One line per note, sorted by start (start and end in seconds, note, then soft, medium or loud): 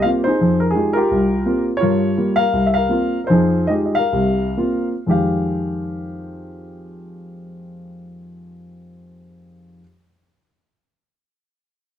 0.00 0.25 G4 medium
0.00 0.25 A#4 medium
0.00 0.08 F5 medium
0.04 0.29 A#3 soft
0.04 0.29 C4 soft
0.04 0.29 F4 medium
0.24 0.74 D#4 medium
0.24 0.59 C5 medium
0.29 0.69 G#4 medium
0.41 0.71 F2 medium
0.60 0.73 A#4 medium
0.71 0.94 G#4 medium
0.75 0.99 G#3 soft
0.75 1.00 D#4 soft
0.75 0.95 F4 soft
0.75 0.96 G4 soft
0.93 1.45 F4 medium
0.93 1.64 G4 medium
0.93 1.62 A#4 medium
1.11 1.42 C2 medium
1.46 1.70 A#3 soft
1.46 1.70 C4 soft
1.46 1.70 F4 medium
1.77 2.16 F4 medium
1.77 2.39 C#5 medium
1.81 2.12 G2 medium
1.81 2.37 A#4 medium
2.18 2.42 G3 soft
2.18 2.42 A#3 soft
2.18 2.41 F4 soft
2.36 2.75 A#4 medium
2.36 2.66 F5 loud
2.53 2.85 C2 medium
2.66 2.76 E5 medium
2.74 3.23 A#4 medium
2.74 3.18 F5 loud
2.89 3.16 A#3 soft
2.89 3.16 C4 soft
2.89 3.16 F4 medium
3.24 3.29 A#4 medium
3.24 3.70 C5 medium
3.30 3.64 F2 medium
3.30 3.64 F3 medium
3.30 3.68 D#4 medium
3.30 4.10 G#4 medium
3.67 3.98 G#3 soft
3.67 3.98 D#4 soft
3.67 3.98 F4 soft
3.67 3.98 G4 soft
3.67 3.72 D#5 medium
3.86 3.97 D#5 soft
3.95 4.87 A#4 medium
3.95 4.85 F5 loud
4.13 4.52 C2 medium
4.13 4.52 C3 medium
4.57 4.91 A#3 soft
4.57 4.92 C4 soft
4.57 4.92 F4 medium
5.07 9.81 F2 medium
5.07 9.81 D#3 soft
5.07 9.82 G#3 soft
5.07 9.84 G4 medium
5.11 9.81 F5 medium